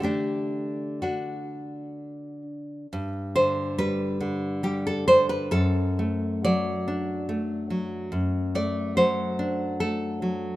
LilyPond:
\new Staff \with { instrumentName = "Nylon-string guitar" } { \time 3/4 \key g \major \tempo 4 = 70 << { <d' g'>4 <d' fis'>4. r8 | r8 c''8 b'4 g'16 a'16 c''16 b'16 | a'4 d''4. r8 | r8 d''8 c''4 a'4 | } \\ { <d a>2. | g,8 d8 g8 d8 g8 d'8 | fis,8 a8 fis8 d'8 a8 fis8 | fis,8 a8 fis8 d'8 a8 fis8 | } >> }